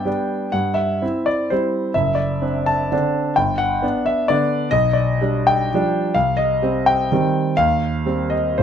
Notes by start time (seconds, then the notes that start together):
Already playing: G5
0.06 G3 B3 D4
0.52 G2 F#5
0.74 E5
1.02 C4 E4
1.26 D5
1.50 G3 C4 E4 C5
1.94 F#1 E5
2.15 D5
2.42 C4 D4
2.66 A5
2.92 D3 C4 D4
3.36 G1 G5
3.58 F#5
3.82 B3 D4
4.06 E5
4.28 D3 B3 D4 D5
4.71 B1 D#5
4.93 D5
5.21 G3 D4
5.47 G5
5.74 F3 G3 D4
6.14 C2 F5
6.37 D#5
6.62 G3 C4
6.86 G5
7.12 D#3 G3 C4
7.57 D#2 F5
8.06 G3 C4
8.30 D#5
8.58 F1 C#3 G#3 C5